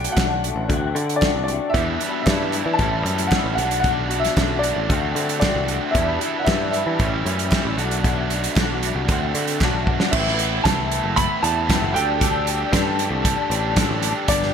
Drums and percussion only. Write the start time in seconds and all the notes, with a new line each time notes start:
0.04 closed hi-hat
0.17 kick, snare, clap, closed hi-hat
0.44 closed hi-hat
0.70 kick, closed hi-hat
0.96 closed hi-hat
1.09 closed hi-hat
1.22 kick, snare, clap, closed hi-hat
1.48 closed hi-hat
1.74 kick, closed hi-hat
2.00 closed hi-hat
2.27 kick, snare, clap, closed hi-hat
2.53 clap, closed hi-hat
2.79 kick, closed hi-hat
3.06 closed hi-hat
3.18 closed hi-hat
3.31 kick, snare, clap, closed hi-hat
3.58 closed hi-hat
3.71 closed hi-hat
3.84 kick, closed hi-hat
4.11 closed hi-hat
4.25 snare, closed hi-hat
4.37 kick, snare, clap, closed hi-hat
4.63 closed hi-hat
4.90 kick, closed hi-hat
5.16 closed hi-hat
5.29 closed hi-hat
5.42 kick, snare, clap, closed hi-hat
5.68 closed hi-hat
5.95 kick, closed hi-hat
6.21 closed hi-hat
6.47 kick, snare, clap, closed hi-hat
6.74 clap, closed hi-hat
6.99 kick, closed hi-hat
7.26 closed hi-hat
7.39 closed hi-hat
7.52 kick, snare, clap, closed hi-hat
7.78 closed hi-hat
7.91 closed hi-hat
8.04 kick, closed hi-hat
8.30 closed hi-hat
8.44 closed hi-hat
8.56 kick, snare, clap, closed hi-hat
8.83 closed hi-hat
9.09 kick, closed hi-hat
9.35 closed hi-hat
9.47 closed hi-hat
9.61 kick, snare, clap
9.87 kick
10.00 snare
10.13 kick, crash
10.27 snare
10.39 closed hi-hat
10.65 kick, snare, closed hi-hat
10.91 closed hi-hat
11.17 kick, closed hi-hat
11.44 closed hi-hat
11.69 kick, snare, closed hi-hat
11.96 closed hi-hat
12.21 kick, closed hi-hat
12.47 closed hi-hat
12.73 kick, snare, closed hi-hat
12.99 closed hi-hat
13.25 kick, closed hi-hat
13.51 closed hi-hat
13.76 kick, snare, closed hi-hat
14.03 closed hi-hat
14.28 kick, closed hi-hat
14.42 snare